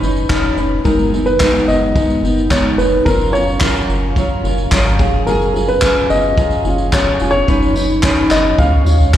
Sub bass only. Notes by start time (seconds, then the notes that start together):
0.02 F#1
0.30 F#1
0.57 F1
0.85 F#1
1.68 F#1
2.23 F#1
2.78 F1
3.06 F#1
3.89 F#1
4.44 F#1
4.72 G#1
5.00 F#1
6.10 F#1
6.65 F#1
7.21 F1
7.48 F#1
8.31 F#1
8.59 C#2
8.72 C#2
8.86 D#2
9.00 C#2
9.14 C#2